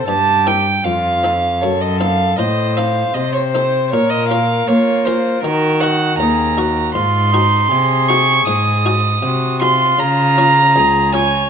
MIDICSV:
0, 0, Header, 1, 5, 480
1, 0, Start_track
1, 0, Tempo, 769231
1, 528, Time_signature, 4, 2, 24, 8
1, 2447, Tempo, 760456
1, 7229, End_track
2, 0, Start_track
2, 0, Title_t, "Violin"
2, 0, Program_c, 0, 40
2, 48, Note_on_c, 0, 81, 83
2, 293, Note_on_c, 0, 79, 70
2, 303, Note_off_c, 0, 81, 0
2, 526, Note_on_c, 0, 77, 74
2, 536, Note_off_c, 0, 79, 0
2, 1009, Note_on_c, 0, 73, 69
2, 1019, Note_off_c, 0, 77, 0
2, 1133, Note_on_c, 0, 75, 59
2, 1142, Note_off_c, 0, 73, 0
2, 1248, Note_off_c, 0, 75, 0
2, 1252, Note_on_c, 0, 77, 69
2, 1484, Note_off_c, 0, 77, 0
2, 1487, Note_on_c, 0, 75, 75
2, 1727, Note_on_c, 0, 77, 69
2, 1737, Note_off_c, 0, 75, 0
2, 1961, Note_on_c, 0, 75, 76
2, 1970, Note_off_c, 0, 77, 0
2, 2079, Note_off_c, 0, 75, 0
2, 2082, Note_on_c, 0, 73, 57
2, 2131, Note_off_c, 0, 73, 0
2, 2196, Note_on_c, 0, 72, 72
2, 2432, Note_off_c, 0, 72, 0
2, 2436, Note_on_c, 0, 73, 74
2, 2560, Note_on_c, 0, 75, 70
2, 2569, Note_off_c, 0, 73, 0
2, 2673, Note_off_c, 0, 75, 0
2, 2677, Note_on_c, 0, 77, 74
2, 2921, Note_on_c, 0, 73, 76
2, 2931, Note_off_c, 0, 77, 0
2, 3160, Note_on_c, 0, 72, 67
2, 3169, Note_off_c, 0, 73, 0
2, 3395, Note_off_c, 0, 72, 0
2, 3398, Note_on_c, 0, 70, 76
2, 3638, Note_on_c, 0, 78, 76
2, 3647, Note_off_c, 0, 70, 0
2, 3871, Note_off_c, 0, 78, 0
2, 3875, Note_on_c, 0, 82, 84
2, 4346, Note_off_c, 0, 82, 0
2, 4354, Note_on_c, 0, 84, 93
2, 5075, Note_on_c, 0, 85, 90
2, 5085, Note_off_c, 0, 84, 0
2, 5317, Note_off_c, 0, 85, 0
2, 5321, Note_on_c, 0, 87, 89
2, 6028, Note_off_c, 0, 87, 0
2, 6043, Note_on_c, 0, 84, 86
2, 6279, Note_on_c, 0, 82, 104
2, 6289, Note_off_c, 0, 84, 0
2, 7004, Note_off_c, 0, 82, 0
2, 7008, Note_on_c, 0, 80, 88
2, 7229, Note_off_c, 0, 80, 0
2, 7229, End_track
3, 0, Start_track
3, 0, Title_t, "Trumpet"
3, 0, Program_c, 1, 56
3, 47, Note_on_c, 1, 67, 58
3, 420, Note_off_c, 1, 67, 0
3, 526, Note_on_c, 1, 65, 59
3, 834, Note_off_c, 1, 65, 0
3, 1010, Note_on_c, 1, 69, 64
3, 1489, Note_on_c, 1, 72, 62
3, 1498, Note_off_c, 1, 69, 0
3, 1963, Note_off_c, 1, 72, 0
3, 1967, Note_on_c, 1, 72, 58
3, 2435, Note_off_c, 1, 72, 0
3, 2450, Note_on_c, 1, 70, 70
3, 2918, Note_off_c, 1, 70, 0
3, 2936, Note_on_c, 1, 65, 62
3, 3401, Note_off_c, 1, 65, 0
3, 3407, Note_on_c, 1, 66, 56
3, 3875, Note_off_c, 1, 66, 0
3, 3888, Note_on_c, 1, 68, 55
3, 4125, Note_on_c, 1, 66, 55
3, 4135, Note_off_c, 1, 68, 0
3, 4354, Note_off_c, 1, 66, 0
3, 4358, Note_on_c, 1, 65, 59
3, 4590, Note_off_c, 1, 65, 0
3, 4594, Note_on_c, 1, 63, 64
3, 4828, Note_off_c, 1, 63, 0
3, 4832, Note_on_c, 1, 68, 72
3, 5609, Note_off_c, 1, 68, 0
3, 5795, Note_on_c, 1, 66, 58
3, 6022, Note_off_c, 1, 66, 0
3, 6039, Note_on_c, 1, 65, 73
3, 6750, Note_off_c, 1, 65, 0
3, 6760, Note_on_c, 1, 68, 66
3, 6998, Note_off_c, 1, 68, 0
3, 7008, Note_on_c, 1, 73, 76
3, 7229, Note_off_c, 1, 73, 0
3, 7229, End_track
4, 0, Start_track
4, 0, Title_t, "Harpsichord"
4, 0, Program_c, 2, 6
4, 0, Note_on_c, 2, 60, 38
4, 0, Note_on_c, 2, 64, 36
4, 0, Note_on_c, 2, 70, 37
4, 50, Note_on_c, 2, 43, 40
4, 158, Note_off_c, 2, 60, 0
4, 158, Note_off_c, 2, 64, 0
4, 160, Note_off_c, 2, 70, 0
4, 290, Note_on_c, 2, 60, 37
4, 293, Note_on_c, 2, 64, 36
4, 293, Note_on_c, 2, 70, 43
4, 463, Note_off_c, 2, 60, 0
4, 464, Note_off_c, 2, 64, 0
4, 464, Note_off_c, 2, 70, 0
4, 505, Note_off_c, 2, 43, 0
4, 535, Note_on_c, 2, 41, 41
4, 771, Note_on_c, 2, 60, 35
4, 775, Note_on_c, 2, 63, 34
4, 780, Note_on_c, 2, 69, 33
4, 943, Note_off_c, 2, 60, 0
4, 988, Note_off_c, 2, 41, 0
4, 1019, Note_on_c, 2, 42, 45
4, 1119, Note_off_c, 2, 63, 0
4, 1122, Note_off_c, 2, 69, 0
4, 1251, Note_on_c, 2, 60, 36
4, 1252, Note_on_c, 2, 63, 37
4, 1253, Note_on_c, 2, 69, 40
4, 1424, Note_off_c, 2, 60, 0
4, 1424, Note_off_c, 2, 63, 0
4, 1425, Note_off_c, 2, 69, 0
4, 1470, Note_off_c, 2, 42, 0
4, 1492, Note_on_c, 2, 45, 48
4, 1732, Note_on_c, 2, 60, 37
4, 1733, Note_on_c, 2, 63, 34
4, 1737, Note_on_c, 2, 69, 42
4, 1945, Note_off_c, 2, 45, 0
4, 1968, Note_on_c, 2, 48, 48
4, 2076, Note_off_c, 2, 60, 0
4, 2076, Note_off_c, 2, 63, 0
4, 2079, Note_off_c, 2, 69, 0
4, 2213, Note_on_c, 2, 60, 36
4, 2215, Note_on_c, 2, 63, 38
4, 2219, Note_on_c, 2, 69, 42
4, 2382, Note_off_c, 2, 60, 0
4, 2384, Note_off_c, 2, 63, 0
4, 2386, Note_off_c, 2, 69, 0
4, 2420, Note_off_c, 2, 48, 0
4, 2456, Note_on_c, 2, 46, 43
4, 2690, Note_on_c, 2, 65, 35
4, 2691, Note_on_c, 2, 61, 34
4, 2695, Note_on_c, 2, 70, 40
4, 2905, Note_off_c, 2, 46, 0
4, 2929, Note_on_c, 2, 58, 48
4, 3033, Note_off_c, 2, 65, 0
4, 3034, Note_off_c, 2, 61, 0
4, 3037, Note_off_c, 2, 70, 0
4, 3169, Note_on_c, 2, 61, 41
4, 3172, Note_on_c, 2, 65, 36
4, 3173, Note_on_c, 2, 70, 42
4, 3340, Note_off_c, 2, 61, 0
4, 3342, Note_off_c, 2, 65, 0
4, 3343, Note_off_c, 2, 70, 0
4, 3381, Note_off_c, 2, 58, 0
4, 3408, Note_on_c, 2, 51, 48
4, 3650, Note_on_c, 2, 63, 37
4, 3652, Note_on_c, 2, 66, 36
4, 3657, Note_on_c, 2, 70, 39
4, 3861, Note_off_c, 2, 51, 0
4, 3886, Note_on_c, 2, 39, 51
4, 3992, Note_off_c, 2, 63, 0
4, 3993, Note_off_c, 2, 66, 0
4, 3997, Note_off_c, 2, 70, 0
4, 4121, Note_on_c, 2, 63, 39
4, 4127, Note_on_c, 2, 66, 40
4, 4127, Note_on_c, 2, 70, 44
4, 4293, Note_off_c, 2, 63, 0
4, 4296, Note_off_c, 2, 66, 0
4, 4296, Note_off_c, 2, 70, 0
4, 4335, Note_off_c, 2, 39, 0
4, 4361, Note_on_c, 2, 44, 47
4, 4603, Note_on_c, 2, 63, 35
4, 4604, Note_on_c, 2, 66, 34
4, 4607, Note_on_c, 2, 68, 41
4, 4814, Note_off_c, 2, 44, 0
4, 4840, Note_on_c, 2, 48, 49
4, 4948, Note_off_c, 2, 63, 0
4, 4948, Note_off_c, 2, 66, 0
4, 4950, Note_off_c, 2, 68, 0
4, 5082, Note_on_c, 2, 63, 40
4, 5083, Note_on_c, 2, 66, 41
4, 5085, Note_on_c, 2, 68, 46
4, 5254, Note_off_c, 2, 63, 0
4, 5255, Note_off_c, 2, 66, 0
4, 5256, Note_off_c, 2, 68, 0
4, 5295, Note_off_c, 2, 48, 0
4, 5320, Note_on_c, 2, 44, 53
4, 5562, Note_on_c, 2, 63, 38
4, 5564, Note_on_c, 2, 66, 41
4, 5567, Note_on_c, 2, 68, 46
4, 5776, Note_off_c, 2, 44, 0
4, 5795, Note_on_c, 2, 48, 51
4, 5908, Note_off_c, 2, 63, 0
4, 5909, Note_off_c, 2, 66, 0
4, 5912, Note_off_c, 2, 68, 0
4, 6039, Note_on_c, 2, 63, 41
4, 6042, Note_on_c, 2, 66, 44
4, 6045, Note_on_c, 2, 68, 47
4, 6214, Note_off_c, 2, 63, 0
4, 6216, Note_off_c, 2, 66, 0
4, 6218, Note_off_c, 2, 68, 0
4, 6255, Note_off_c, 2, 48, 0
4, 6275, Note_on_c, 2, 49, 49
4, 6522, Note_on_c, 2, 61, 36
4, 6523, Note_on_c, 2, 65, 40
4, 6527, Note_on_c, 2, 68, 42
4, 6736, Note_off_c, 2, 49, 0
4, 6763, Note_on_c, 2, 37, 48
4, 6870, Note_off_c, 2, 61, 0
4, 6870, Note_off_c, 2, 65, 0
4, 6873, Note_off_c, 2, 68, 0
4, 7000, Note_on_c, 2, 61, 42
4, 7002, Note_on_c, 2, 65, 42
4, 7005, Note_on_c, 2, 68, 48
4, 7176, Note_off_c, 2, 61, 0
4, 7177, Note_off_c, 2, 65, 0
4, 7179, Note_off_c, 2, 68, 0
4, 7221, Note_off_c, 2, 37, 0
4, 7229, End_track
5, 0, Start_track
5, 0, Title_t, "Cello"
5, 0, Program_c, 3, 42
5, 55, Note_on_c, 3, 43, 51
5, 522, Note_off_c, 3, 43, 0
5, 536, Note_on_c, 3, 41, 59
5, 1015, Note_on_c, 3, 42, 60
5, 1024, Note_off_c, 3, 41, 0
5, 1490, Note_off_c, 3, 42, 0
5, 1494, Note_on_c, 3, 45, 55
5, 1961, Note_off_c, 3, 45, 0
5, 1970, Note_on_c, 3, 48, 57
5, 2449, Note_on_c, 3, 46, 58
5, 2458, Note_off_c, 3, 48, 0
5, 2924, Note_off_c, 3, 46, 0
5, 2928, Note_on_c, 3, 58, 61
5, 3397, Note_off_c, 3, 58, 0
5, 3409, Note_on_c, 3, 51, 69
5, 3877, Note_off_c, 3, 51, 0
5, 3890, Note_on_c, 3, 39, 58
5, 4353, Note_off_c, 3, 39, 0
5, 4365, Note_on_c, 3, 44, 69
5, 4816, Note_off_c, 3, 44, 0
5, 4840, Note_on_c, 3, 48, 63
5, 5310, Note_off_c, 3, 48, 0
5, 5321, Note_on_c, 3, 44, 61
5, 5792, Note_off_c, 3, 44, 0
5, 5806, Note_on_c, 3, 48, 61
5, 6276, Note_off_c, 3, 48, 0
5, 6283, Note_on_c, 3, 49, 72
5, 6768, Note_on_c, 3, 37, 58
5, 6777, Note_off_c, 3, 49, 0
5, 7229, Note_off_c, 3, 37, 0
5, 7229, End_track
0, 0, End_of_file